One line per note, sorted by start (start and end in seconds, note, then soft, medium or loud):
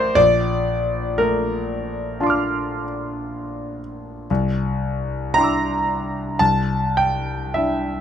0.00 0.13 A1 medium
0.00 0.12 E4 soft
0.00 0.12 G4 soft
0.00 0.19 A#4 medium
0.00 0.15 C5 medium
0.00 0.15 D5 medium
0.00 0.18 E5 loud
0.15 4.25 A#1 medium
0.15 1.17 D5 loud
1.18 2.84 A3 medium
1.18 3.78 A#4 medium
2.20 4.26 D4 medium
2.20 4.26 F4 medium
2.20 4.26 A5 soft
2.20 4.27 C6 soft
2.26 4.29 D6 soft
2.26 4.30 F6 soft
4.30 6.36 C2 medium
5.34 6.37 D4 soft
5.34 6.37 E4 soft
5.34 6.37 G5 soft
5.34 6.40 A#5 loud
5.38 6.38 C6 soft
5.38 6.40 D6 soft
5.44 6.41 E6 soft
6.39 8.01 C2 medium
6.39 6.96 A5 medium
6.97 7.54 G5 medium
7.54 8.01 D4 soft
7.54 8.01 E4 soft
7.54 8.01 E5 medium